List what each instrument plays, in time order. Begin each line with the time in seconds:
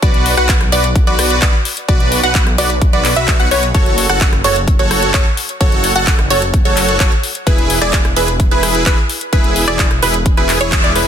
0.02 detuned saw bass B1, supersaw synth F#4 B4 D5, synth pluck D5, kick, closed hi-hat
0.14 closed hi-hat
0.26 open hi-hat
0.37 detuned saw bass B1, supersaw synth F#4 B4 F#5, synth pluck F#5, cross-stick, closed hi-hat
0.49 kick, clap, closed hi-hat
0.61 cross-stick, closed hi-hat
0.72 detuned saw bass B1, supersaw synth F#4 B4 D5, synth pluck D5, open hi-hat
0.84 closed hi-hat
0.96 kick, closed hi-hat
1.07 detuned saw bass B1, supersaw synth F#4 B4 D5, synth pluck D5, closed hi-hat
1.19 cross-stick, open hi-hat
1.30 closed hi-hat
1.42 detuned saw bass B1, supersaw synth F#4 B4, synth pluck D5, kick, clap, closed hi-hat
1.65 open hi-hat
1.77 closed hi-hat
1.88 detuned saw bass B1, supersaw synth F#4 B4 D5, synth pluck D5, kick, closed hi-hat
2.00 closed hi-hat
2.12 open hi-hat
2.23 detuned saw bass B1, supersaw synth F#4 B4 F#5, synth pluck F#5, closed hi-hat
2.35 kick, clap, closed hi-hat
2.47 cross-stick, closed hi-hat
2.58 detuned saw bass B1, supersaw synth F#4 B4 D5, synth pluck D5, open hi-hat
2.70 closed hi-hat
2.82 kick, closed hi-hat
2.93 detuned saw bass B1, supersaw synth F#4 B4 D5, synth pluck D5, closed hi-hat
3.05 clap, open hi-hat
3.16 detuned saw bass B1, supersaw synth F#4 B4 E5, synth pluck E5, closed hi-hat
3.28 kick, clap, closed hi-hat
3.40 detuned saw bass B1, supersaw synth F#4 B4 F#5, synth pluck F#5, closed hi-hat
3.51 detuned saw bass B1, supersaw synth F#4 B4 C#5, synth pluck C#5, open hi-hat
3.63 closed hi-hat
3.74 detuned saw bass F#1, supersaw synth F#4 A4 C#5, synth pluck C#5, kick, closed hi-hat
3.86 closed hi-hat
3.98 open hi-hat
4.09 detuned saw bass F#1, supersaw synth F#4 A4 F#5, synth pluck F#5, cross-stick, closed hi-hat
4.21 kick, clap, closed hi-hat
4.33 cross-stick, closed hi-hat
4.44 detuned saw bass F#1, supersaw synth F#4 A4 C#5, synth pluck C#5, open hi-hat
4.56 closed hi-hat
4.68 kick, closed hi-hat
4.79 detuned saw bass F#1, supersaw synth F#4 A4 C#5, synth pluck C#5, closed hi-hat
4.91 cross-stick, open hi-hat
5.03 closed hi-hat
5.14 detuned saw bass F#1, synth pluck C#5, kick, clap, closed hi-hat
5.37 open hi-hat
5.49 closed hi-hat
5.61 detuned saw bass F#1, supersaw synth F#4 A4 C#5, synth pluck C#5, kick, closed hi-hat
5.72 closed hi-hat
5.84 open hi-hat
5.96 detuned saw bass F#1, supersaw synth F#4 A4 F#5, synth pluck F#5, closed hi-hat
6.07 kick, clap, closed hi-hat
6.19 cross-stick, closed hi-hat
6.30 detuned saw bass F#1, supersaw synth F#4 A4 C#5, synth pluck C#5, open hi-hat
6.42 closed hi-hat
6.54 kick, closed hi-hat
6.65 detuned saw bass F#1, supersaw synth F#4 A4 C#5, synth pluck C#5, closed hi-hat
6.77 clap, open hi-hat
6.89 closed hi-hat
7.00 detuned saw bass F#1, supersaw synth F#4 A4 C#5, synth pluck C#5, kick, clap, closed hi-hat
7.12 closed hi-hat
7.23 open hi-hat
7.35 closed hi-hat
7.47 detuned saw bass E1, supersaw synth E4 G#4 B4, synth pluck B4, kick, closed hi-hat
7.58 closed hi-hat
7.70 open hi-hat
7.82 detuned saw bass E1, supersaw synth E4 G#4 D5, synth pluck D5, cross-stick, closed hi-hat
7.93 kick, clap, closed hi-hat
8.05 cross-stick, closed hi-hat
8.16 detuned saw bass E1, supersaw synth E4 G#4 B4, synth pluck B4, open hi-hat
8.28 closed hi-hat
8.40 kick, closed hi-hat
8.51 detuned saw bass E1, supersaw synth E4 G#4 B4, synth pluck B4, closed hi-hat
8.63 cross-stick, open hi-hat
8.75 closed hi-hat
8.86 detuned saw bass E1, supersaw synth E4 B4, synth pluck B4, kick, clap, closed hi-hat
9.09 open hi-hat
9.21 closed hi-hat
9.33 detuned saw bass E1, supersaw synth E4 G#4 B4, synth pluck B4, kick, closed hi-hat
9.44 closed hi-hat
9.56 open hi-hat
9.68 detuned saw bass E1, supersaw synth E4 G#4 D5, synth pluck D5, cross-stick, closed hi-hat
9.79 kick, clap, closed hi-hat
9.91 cross-stick, closed hi-hat
10.02 detuned saw bass E1, supersaw synth E4 G#4 B4, synth pluck B4, open hi-hat
10.14 closed hi-hat
10.26 kick, closed hi-hat
10.37 detuned saw bass E1, supersaw synth E4 G#4 B4, synth pluck B4, closed hi-hat
10.49 clap, open hi-hat
10.61 detuned saw bass E1, supersaw synth E4 G#4 C#5, synth pluck C#5, closed hi-hat
10.72 kick, clap, closed hi-hat
10.84 detuned saw bass E1, supersaw synth E4 G#4 D5, synth pluck D5, closed hi-hat
10.96 detuned saw bass E1, supersaw synth E4 G#4 B4, synth pluck B4, open hi-hat